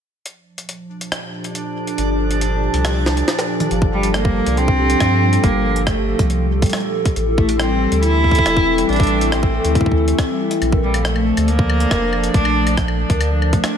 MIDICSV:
0, 0, Header, 1, 7, 480
1, 0, Start_track
1, 0, Tempo, 431655
1, 285, Time_signature, 4, 2, 24, 8
1, 15318, End_track
2, 0, Start_track
2, 0, Title_t, "Synth texture"
2, 0, Program_c, 0, 99
2, 286, Note_on_c, 0, 62, 80
2, 286, Note_on_c, 0, 74, 78
2, 4135, Note_off_c, 0, 62, 0
2, 4135, Note_off_c, 0, 74, 0
2, 15318, End_track
3, 0, Start_track
3, 0, Title_t, "Ambient pad"
3, 0, Program_c, 1, 92
3, 285, Note_on_c, 1, 53, 88
3, 642, Note_on_c, 1, 46, 89
3, 861, Note_on_c, 1, 62, 89
3, 1065, Note_on_c, 1, 67, 69
3, 1421, Note_on_c, 1, 69, 92
3, 7965, Note_off_c, 1, 46, 0
3, 7965, Note_off_c, 1, 53, 0
3, 7966, Note_on_c, 1, 52, 74
3, 8157, Note_on_c, 1, 57, 90
3, 8581, Note_on_c, 1, 60, 80
3, 9347, Note_off_c, 1, 62, 0
3, 11805, Note_off_c, 1, 52, 0
3, 11805, Note_off_c, 1, 57, 0
3, 11805, Note_on_c, 1, 53, 78
3, 12049, Note_on_c, 1, 74, 91
3, 12509, Note_on_c, 1, 62, 76
3, 13005, Note_off_c, 1, 67, 0
3, 13095, Note_off_c, 1, 60, 0
3, 15318, Note_off_c, 1, 53, 0
3, 15318, Note_off_c, 1, 62, 0
3, 15318, Note_off_c, 1, 69, 0
3, 15318, Note_off_c, 1, 74, 0
3, 15318, End_track
4, 0, Start_track
4, 0, Title_t, "Cello"
4, 0, Program_c, 2, 42
4, 4367, Note_on_c, 2, 55, 92
4, 4589, Note_off_c, 2, 55, 0
4, 4607, Note_on_c, 2, 58, 101
4, 5086, Note_on_c, 2, 60, 122
4, 5103, Note_off_c, 2, 58, 0
4, 6047, Note_on_c, 2, 58, 100
4, 6064, Note_off_c, 2, 60, 0
4, 6520, Note_off_c, 2, 58, 0
4, 6527, Note_on_c, 2, 57, 86
4, 7201, Note_off_c, 2, 57, 0
4, 8204, Note_on_c, 2, 57, 95
4, 8428, Note_off_c, 2, 57, 0
4, 8444, Note_on_c, 2, 60, 97
4, 8891, Note_off_c, 2, 60, 0
4, 8923, Note_on_c, 2, 64, 119
4, 9840, Note_off_c, 2, 64, 0
4, 9882, Note_on_c, 2, 62, 103
4, 10363, Note_on_c, 2, 60, 86
4, 10379, Note_off_c, 2, 62, 0
4, 11084, Note_off_c, 2, 60, 0
4, 12044, Note_on_c, 2, 55, 83
4, 12267, Note_off_c, 2, 55, 0
4, 12283, Note_on_c, 2, 57, 92
4, 12765, Note_on_c, 2, 58, 105
4, 12782, Note_off_c, 2, 57, 0
4, 13719, Note_off_c, 2, 58, 0
4, 13726, Note_on_c, 2, 62, 103
4, 14172, Note_off_c, 2, 62, 0
4, 15318, End_track
5, 0, Start_track
5, 0, Title_t, "Vibraphone"
5, 0, Program_c, 3, 11
5, 4124, Note_on_c, 3, 53, 81
5, 4202, Note_off_c, 3, 53, 0
5, 4244, Note_on_c, 3, 53, 99
5, 4350, Note_off_c, 3, 53, 0
5, 4363, Note_on_c, 3, 53, 75
5, 4442, Note_off_c, 3, 53, 0
5, 4484, Note_on_c, 3, 55, 74
5, 4531, Note_off_c, 3, 55, 0
5, 4723, Note_on_c, 3, 55, 73
5, 4771, Note_off_c, 3, 55, 0
5, 4963, Note_on_c, 3, 53, 73
5, 5011, Note_off_c, 3, 53, 0
5, 5323, Note_on_c, 3, 67, 97
5, 5438, Note_off_c, 3, 67, 0
5, 5444, Note_on_c, 3, 53, 76
5, 5522, Note_off_c, 3, 53, 0
5, 5563, Note_on_c, 3, 53, 101
5, 5671, Note_off_c, 3, 53, 0
5, 5684, Note_on_c, 3, 53, 75
5, 5762, Note_off_c, 3, 53, 0
5, 5805, Note_on_c, 3, 55, 74
5, 5852, Note_off_c, 3, 55, 0
5, 6045, Note_on_c, 3, 55, 81
5, 6092, Note_off_c, 3, 55, 0
5, 6285, Note_on_c, 3, 53, 74
5, 6332, Note_off_c, 3, 53, 0
5, 6645, Note_on_c, 3, 67, 97
5, 6759, Note_off_c, 3, 67, 0
5, 6765, Note_on_c, 3, 53, 75
5, 6843, Note_off_c, 3, 53, 0
5, 6885, Note_on_c, 3, 53, 95
5, 6992, Note_off_c, 3, 53, 0
5, 7005, Note_on_c, 3, 53, 81
5, 7083, Note_off_c, 3, 53, 0
5, 7126, Note_on_c, 3, 55, 78
5, 7172, Note_off_c, 3, 55, 0
5, 7366, Note_on_c, 3, 55, 76
5, 7412, Note_off_c, 3, 55, 0
5, 7606, Note_on_c, 3, 53, 74
5, 7652, Note_off_c, 3, 53, 0
5, 7966, Note_on_c, 3, 69, 100
5, 8080, Note_off_c, 3, 69, 0
5, 8085, Note_on_c, 3, 64, 76
5, 8163, Note_off_c, 3, 64, 0
5, 8204, Note_on_c, 3, 64, 97
5, 8312, Note_off_c, 3, 64, 0
5, 8325, Note_on_c, 3, 64, 76
5, 8403, Note_off_c, 3, 64, 0
5, 8445, Note_on_c, 3, 55, 81
5, 8492, Note_off_c, 3, 55, 0
5, 8685, Note_on_c, 3, 55, 73
5, 8732, Note_off_c, 3, 55, 0
5, 8925, Note_on_c, 3, 64, 81
5, 8972, Note_off_c, 3, 64, 0
5, 9285, Note_on_c, 3, 69, 103
5, 9399, Note_off_c, 3, 69, 0
5, 9404, Note_on_c, 3, 64, 81
5, 9483, Note_off_c, 3, 64, 0
5, 9525, Note_on_c, 3, 64, 98
5, 9631, Note_off_c, 3, 64, 0
5, 9645, Note_on_c, 3, 64, 73
5, 9723, Note_off_c, 3, 64, 0
5, 9764, Note_on_c, 3, 55, 79
5, 9812, Note_off_c, 3, 55, 0
5, 10004, Note_on_c, 3, 55, 74
5, 10051, Note_off_c, 3, 55, 0
5, 10245, Note_on_c, 3, 64, 74
5, 10292, Note_off_c, 3, 64, 0
5, 10605, Note_on_c, 3, 69, 96
5, 10719, Note_off_c, 3, 69, 0
5, 10726, Note_on_c, 3, 64, 75
5, 10803, Note_off_c, 3, 64, 0
5, 10845, Note_on_c, 3, 64, 97
5, 10952, Note_off_c, 3, 64, 0
5, 10965, Note_on_c, 3, 64, 75
5, 11043, Note_off_c, 3, 64, 0
5, 11085, Note_on_c, 3, 64, 75
5, 11199, Note_off_c, 3, 64, 0
5, 11324, Note_on_c, 3, 60, 81
5, 11371, Note_off_c, 3, 60, 0
5, 11445, Note_on_c, 3, 55, 77
5, 11523, Note_off_c, 3, 55, 0
5, 11565, Note_on_c, 3, 64, 73
5, 11643, Note_off_c, 3, 64, 0
5, 11685, Note_on_c, 3, 64, 79
5, 11763, Note_off_c, 3, 64, 0
5, 11925, Note_on_c, 3, 70, 98
5, 12039, Note_off_c, 3, 70, 0
5, 12045, Note_on_c, 3, 53, 75
5, 12123, Note_off_c, 3, 53, 0
5, 12165, Note_on_c, 3, 53, 100
5, 12271, Note_off_c, 3, 53, 0
5, 12285, Note_on_c, 3, 53, 80
5, 12363, Note_off_c, 3, 53, 0
5, 12405, Note_on_c, 3, 57, 75
5, 12452, Note_off_c, 3, 57, 0
5, 12646, Note_on_c, 3, 57, 73
5, 12692, Note_off_c, 3, 57, 0
5, 12885, Note_on_c, 3, 53, 76
5, 12932, Note_off_c, 3, 53, 0
5, 13245, Note_on_c, 3, 70, 101
5, 13359, Note_off_c, 3, 70, 0
5, 13366, Note_on_c, 3, 53, 77
5, 13443, Note_off_c, 3, 53, 0
5, 13485, Note_on_c, 3, 53, 97
5, 13591, Note_off_c, 3, 53, 0
5, 13604, Note_on_c, 3, 53, 77
5, 13682, Note_off_c, 3, 53, 0
5, 13726, Note_on_c, 3, 57, 81
5, 13772, Note_off_c, 3, 57, 0
5, 13965, Note_on_c, 3, 57, 75
5, 14012, Note_off_c, 3, 57, 0
5, 14205, Note_on_c, 3, 53, 80
5, 14252, Note_off_c, 3, 53, 0
5, 14565, Note_on_c, 3, 70, 98
5, 14679, Note_off_c, 3, 70, 0
5, 14685, Note_on_c, 3, 53, 79
5, 14763, Note_off_c, 3, 53, 0
5, 14804, Note_on_c, 3, 53, 101
5, 14911, Note_off_c, 3, 53, 0
5, 14924, Note_on_c, 3, 53, 73
5, 15003, Note_off_c, 3, 53, 0
5, 15044, Note_on_c, 3, 57, 76
5, 15091, Note_off_c, 3, 57, 0
5, 15284, Note_on_c, 3, 57, 77
5, 15318, Note_off_c, 3, 57, 0
5, 15318, End_track
6, 0, Start_track
6, 0, Title_t, "Sub bass"
6, 0, Program_c, 4, 38
6, 2204, Note_on_c, 4, 31, 95
6, 2990, Note_off_c, 4, 31, 0
6, 3043, Note_on_c, 4, 36, 96
6, 3589, Note_off_c, 4, 36, 0
6, 4125, Note_on_c, 4, 31, 96
6, 4910, Note_off_c, 4, 31, 0
6, 4965, Note_on_c, 4, 36, 96
6, 5510, Note_off_c, 4, 36, 0
6, 5565, Note_on_c, 4, 43, 90
6, 5990, Note_off_c, 4, 43, 0
6, 6044, Note_on_c, 4, 31, 96
6, 6830, Note_off_c, 4, 31, 0
6, 6885, Note_on_c, 4, 36, 96
6, 7430, Note_off_c, 4, 36, 0
6, 7965, Note_on_c, 4, 33, 97
6, 8750, Note_off_c, 4, 33, 0
6, 8804, Note_on_c, 4, 38, 99
6, 9349, Note_off_c, 4, 38, 0
6, 9405, Note_on_c, 4, 28, 87
6, 9830, Note_off_c, 4, 28, 0
6, 9886, Note_on_c, 4, 33, 97
6, 10670, Note_off_c, 4, 33, 0
6, 10725, Note_on_c, 4, 38, 95
6, 11270, Note_off_c, 4, 38, 0
6, 11806, Note_on_c, 4, 34, 99
6, 12590, Note_off_c, 4, 34, 0
6, 12646, Note_on_c, 4, 38, 97
6, 13190, Note_off_c, 4, 38, 0
6, 13245, Note_on_c, 4, 29, 88
6, 13670, Note_off_c, 4, 29, 0
6, 13725, Note_on_c, 4, 34, 95
6, 14510, Note_off_c, 4, 34, 0
6, 14565, Note_on_c, 4, 38, 97
6, 15110, Note_off_c, 4, 38, 0
6, 15318, End_track
7, 0, Start_track
7, 0, Title_t, "Drums"
7, 285, Note_on_c, 9, 42, 67
7, 396, Note_off_c, 9, 42, 0
7, 645, Note_on_c, 9, 42, 53
7, 756, Note_off_c, 9, 42, 0
7, 765, Note_on_c, 9, 42, 66
7, 876, Note_off_c, 9, 42, 0
7, 1125, Note_on_c, 9, 42, 55
7, 1236, Note_off_c, 9, 42, 0
7, 1244, Note_on_c, 9, 37, 118
7, 1244, Note_on_c, 9, 42, 68
7, 1356, Note_off_c, 9, 37, 0
7, 1356, Note_off_c, 9, 42, 0
7, 1605, Note_on_c, 9, 42, 52
7, 1716, Note_off_c, 9, 42, 0
7, 1724, Note_on_c, 9, 42, 65
7, 1835, Note_off_c, 9, 42, 0
7, 2084, Note_on_c, 9, 42, 52
7, 2195, Note_off_c, 9, 42, 0
7, 2204, Note_on_c, 9, 42, 69
7, 2315, Note_off_c, 9, 42, 0
7, 2564, Note_on_c, 9, 42, 57
7, 2676, Note_off_c, 9, 42, 0
7, 2684, Note_on_c, 9, 42, 68
7, 2795, Note_off_c, 9, 42, 0
7, 3045, Note_on_c, 9, 42, 55
7, 3156, Note_off_c, 9, 42, 0
7, 3165, Note_on_c, 9, 37, 122
7, 3165, Note_on_c, 9, 42, 69
7, 3277, Note_off_c, 9, 37, 0
7, 3277, Note_off_c, 9, 42, 0
7, 3405, Note_on_c, 9, 38, 58
7, 3516, Note_off_c, 9, 38, 0
7, 3526, Note_on_c, 9, 42, 53
7, 3637, Note_off_c, 9, 42, 0
7, 3646, Note_on_c, 9, 38, 76
7, 3646, Note_on_c, 9, 42, 69
7, 3757, Note_off_c, 9, 38, 0
7, 3757, Note_off_c, 9, 42, 0
7, 3765, Note_on_c, 9, 38, 71
7, 3877, Note_off_c, 9, 38, 0
7, 4005, Note_on_c, 9, 42, 55
7, 4005, Note_on_c, 9, 45, 83
7, 4116, Note_off_c, 9, 42, 0
7, 4116, Note_off_c, 9, 45, 0
7, 4126, Note_on_c, 9, 42, 56
7, 4237, Note_off_c, 9, 42, 0
7, 4245, Note_on_c, 9, 36, 105
7, 4356, Note_off_c, 9, 36, 0
7, 4486, Note_on_c, 9, 42, 68
7, 4597, Note_off_c, 9, 42, 0
7, 4606, Note_on_c, 9, 37, 119
7, 4606, Note_on_c, 9, 42, 54
7, 4717, Note_off_c, 9, 37, 0
7, 4717, Note_off_c, 9, 42, 0
7, 4725, Note_on_c, 9, 36, 122
7, 4836, Note_off_c, 9, 36, 0
7, 4965, Note_on_c, 9, 42, 69
7, 5076, Note_off_c, 9, 42, 0
7, 5086, Note_on_c, 9, 42, 54
7, 5197, Note_off_c, 9, 42, 0
7, 5205, Note_on_c, 9, 36, 108
7, 5316, Note_off_c, 9, 36, 0
7, 5446, Note_on_c, 9, 42, 65
7, 5557, Note_off_c, 9, 42, 0
7, 5565, Note_on_c, 9, 36, 103
7, 5565, Note_on_c, 9, 37, 114
7, 5565, Note_on_c, 9, 42, 52
7, 5676, Note_off_c, 9, 36, 0
7, 5676, Note_off_c, 9, 37, 0
7, 5676, Note_off_c, 9, 42, 0
7, 5925, Note_on_c, 9, 42, 69
7, 6036, Note_off_c, 9, 42, 0
7, 6045, Note_on_c, 9, 36, 121
7, 6045, Note_on_c, 9, 42, 56
7, 6156, Note_off_c, 9, 36, 0
7, 6157, Note_off_c, 9, 42, 0
7, 6405, Note_on_c, 9, 42, 69
7, 6516, Note_off_c, 9, 42, 0
7, 6525, Note_on_c, 9, 36, 105
7, 6525, Note_on_c, 9, 37, 122
7, 6525, Note_on_c, 9, 42, 55
7, 6636, Note_off_c, 9, 36, 0
7, 6636, Note_off_c, 9, 37, 0
7, 6636, Note_off_c, 9, 42, 0
7, 6885, Note_on_c, 9, 36, 108
7, 6885, Note_on_c, 9, 42, 70
7, 6996, Note_off_c, 9, 36, 0
7, 6996, Note_off_c, 9, 42, 0
7, 7004, Note_on_c, 9, 42, 56
7, 7116, Note_off_c, 9, 42, 0
7, 7365, Note_on_c, 9, 36, 120
7, 7365, Note_on_c, 9, 42, 65
7, 7405, Note_off_c, 9, 42, 0
7, 7405, Note_on_c, 9, 42, 52
7, 7445, Note_off_c, 9, 42, 0
7, 7445, Note_on_c, 9, 42, 43
7, 7476, Note_off_c, 9, 36, 0
7, 7485, Note_off_c, 9, 42, 0
7, 7485, Note_on_c, 9, 37, 120
7, 7485, Note_on_c, 9, 42, 55
7, 7524, Note_off_c, 9, 42, 0
7, 7524, Note_on_c, 9, 42, 30
7, 7565, Note_off_c, 9, 42, 0
7, 7565, Note_on_c, 9, 42, 24
7, 7597, Note_off_c, 9, 37, 0
7, 7676, Note_off_c, 9, 42, 0
7, 7845, Note_on_c, 9, 36, 103
7, 7845, Note_on_c, 9, 42, 68
7, 7956, Note_off_c, 9, 36, 0
7, 7956, Note_off_c, 9, 42, 0
7, 7965, Note_on_c, 9, 42, 55
7, 8076, Note_off_c, 9, 42, 0
7, 8205, Note_on_c, 9, 36, 112
7, 8316, Note_off_c, 9, 36, 0
7, 8326, Note_on_c, 9, 42, 67
7, 8437, Note_off_c, 9, 42, 0
7, 8446, Note_on_c, 9, 37, 121
7, 8446, Note_on_c, 9, 42, 54
7, 8557, Note_off_c, 9, 37, 0
7, 8557, Note_off_c, 9, 42, 0
7, 8805, Note_on_c, 9, 42, 70
7, 8917, Note_off_c, 9, 42, 0
7, 8925, Note_on_c, 9, 42, 56
7, 9037, Note_off_c, 9, 42, 0
7, 9165, Note_on_c, 9, 36, 49
7, 9245, Note_off_c, 9, 36, 0
7, 9245, Note_on_c, 9, 36, 71
7, 9285, Note_on_c, 9, 42, 66
7, 9325, Note_off_c, 9, 36, 0
7, 9325, Note_on_c, 9, 36, 86
7, 9396, Note_off_c, 9, 42, 0
7, 9406, Note_on_c, 9, 37, 122
7, 9406, Note_on_c, 9, 42, 55
7, 9436, Note_off_c, 9, 36, 0
7, 9517, Note_off_c, 9, 37, 0
7, 9517, Note_off_c, 9, 42, 0
7, 9525, Note_on_c, 9, 36, 110
7, 9636, Note_off_c, 9, 36, 0
7, 9766, Note_on_c, 9, 42, 68
7, 9877, Note_off_c, 9, 42, 0
7, 9886, Note_on_c, 9, 42, 23
7, 9926, Note_off_c, 9, 42, 0
7, 9926, Note_on_c, 9, 42, 29
7, 9966, Note_off_c, 9, 42, 0
7, 9966, Note_on_c, 9, 42, 32
7, 10005, Note_on_c, 9, 36, 117
7, 10006, Note_off_c, 9, 42, 0
7, 10006, Note_on_c, 9, 42, 35
7, 10046, Note_off_c, 9, 42, 0
7, 10046, Note_on_c, 9, 42, 41
7, 10085, Note_off_c, 9, 42, 0
7, 10085, Note_on_c, 9, 42, 45
7, 10116, Note_off_c, 9, 36, 0
7, 10196, Note_off_c, 9, 42, 0
7, 10245, Note_on_c, 9, 42, 68
7, 10356, Note_off_c, 9, 42, 0
7, 10366, Note_on_c, 9, 37, 123
7, 10366, Note_on_c, 9, 42, 51
7, 10477, Note_off_c, 9, 37, 0
7, 10477, Note_off_c, 9, 42, 0
7, 10485, Note_on_c, 9, 36, 113
7, 10596, Note_off_c, 9, 36, 0
7, 10726, Note_on_c, 9, 42, 66
7, 10837, Note_off_c, 9, 42, 0
7, 10845, Note_on_c, 9, 36, 101
7, 10846, Note_on_c, 9, 42, 54
7, 10905, Note_off_c, 9, 36, 0
7, 10905, Note_on_c, 9, 36, 85
7, 10958, Note_off_c, 9, 42, 0
7, 10966, Note_off_c, 9, 36, 0
7, 10966, Note_on_c, 9, 36, 72
7, 11026, Note_off_c, 9, 36, 0
7, 11026, Note_on_c, 9, 36, 58
7, 11137, Note_off_c, 9, 36, 0
7, 11206, Note_on_c, 9, 42, 66
7, 11317, Note_off_c, 9, 42, 0
7, 11326, Note_on_c, 9, 36, 124
7, 11326, Note_on_c, 9, 37, 119
7, 11326, Note_on_c, 9, 42, 52
7, 11437, Note_off_c, 9, 36, 0
7, 11437, Note_off_c, 9, 37, 0
7, 11437, Note_off_c, 9, 42, 0
7, 11686, Note_on_c, 9, 42, 65
7, 11797, Note_off_c, 9, 42, 0
7, 11806, Note_on_c, 9, 42, 51
7, 11806, Note_on_c, 9, 76, 51
7, 11917, Note_off_c, 9, 42, 0
7, 11917, Note_off_c, 9, 76, 0
7, 11926, Note_on_c, 9, 36, 100
7, 12037, Note_off_c, 9, 36, 0
7, 12166, Note_on_c, 9, 42, 64
7, 12166, Note_on_c, 9, 76, 76
7, 12278, Note_off_c, 9, 42, 0
7, 12278, Note_off_c, 9, 76, 0
7, 12286, Note_on_c, 9, 37, 121
7, 12286, Note_on_c, 9, 42, 48
7, 12398, Note_off_c, 9, 37, 0
7, 12398, Note_off_c, 9, 42, 0
7, 12407, Note_on_c, 9, 76, 50
7, 12518, Note_off_c, 9, 76, 0
7, 12646, Note_on_c, 9, 42, 66
7, 12646, Note_on_c, 9, 76, 52
7, 12757, Note_off_c, 9, 42, 0
7, 12757, Note_off_c, 9, 76, 0
7, 12766, Note_on_c, 9, 42, 51
7, 12877, Note_off_c, 9, 42, 0
7, 12886, Note_on_c, 9, 36, 111
7, 12997, Note_off_c, 9, 36, 0
7, 13006, Note_on_c, 9, 76, 73
7, 13117, Note_off_c, 9, 76, 0
7, 13125, Note_on_c, 9, 42, 63
7, 13237, Note_off_c, 9, 42, 0
7, 13245, Note_on_c, 9, 36, 104
7, 13245, Note_on_c, 9, 37, 120
7, 13245, Note_on_c, 9, 42, 51
7, 13245, Note_on_c, 9, 76, 50
7, 13357, Note_off_c, 9, 36, 0
7, 13357, Note_off_c, 9, 37, 0
7, 13357, Note_off_c, 9, 42, 0
7, 13357, Note_off_c, 9, 76, 0
7, 13486, Note_on_c, 9, 76, 52
7, 13597, Note_off_c, 9, 76, 0
7, 13606, Note_on_c, 9, 42, 64
7, 13717, Note_off_c, 9, 42, 0
7, 13725, Note_on_c, 9, 36, 111
7, 13726, Note_on_c, 9, 42, 51
7, 13836, Note_off_c, 9, 36, 0
7, 13837, Note_off_c, 9, 42, 0
7, 13846, Note_on_c, 9, 76, 80
7, 13957, Note_off_c, 9, 76, 0
7, 14086, Note_on_c, 9, 42, 65
7, 14086, Note_on_c, 9, 76, 54
7, 14197, Note_off_c, 9, 42, 0
7, 14197, Note_off_c, 9, 76, 0
7, 14205, Note_on_c, 9, 36, 101
7, 14206, Note_on_c, 9, 37, 113
7, 14206, Note_on_c, 9, 42, 50
7, 14316, Note_off_c, 9, 36, 0
7, 14317, Note_off_c, 9, 37, 0
7, 14317, Note_off_c, 9, 42, 0
7, 14326, Note_on_c, 9, 76, 53
7, 14437, Note_off_c, 9, 76, 0
7, 14565, Note_on_c, 9, 36, 103
7, 14565, Note_on_c, 9, 42, 66
7, 14676, Note_off_c, 9, 36, 0
7, 14676, Note_off_c, 9, 42, 0
7, 14685, Note_on_c, 9, 42, 51
7, 14685, Note_on_c, 9, 76, 79
7, 14796, Note_off_c, 9, 42, 0
7, 14796, Note_off_c, 9, 76, 0
7, 14924, Note_on_c, 9, 76, 51
7, 15035, Note_off_c, 9, 76, 0
7, 15044, Note_on_c, 9, 36, 112
7, 15044, Note_on_c, 9, 42, 62
7, 15156, Note_off_c, 9, 36, 0
7, 15156, Note_off_c, 9, 42, 0
7, 15164, Note_on_c, 9, 37, 110
7, 15164, Note_on_c, 9, 42, 51
7, 15164, Note_on_c, 9, 76, 50
7, 15275, Note_off_c, 9, 37, 0
7, 15275, Note_off_c, 9, 42, 0
7, 15275, Note_off_c, 9, 76, 0
7, 15318, End_track
0, 0, End_of_file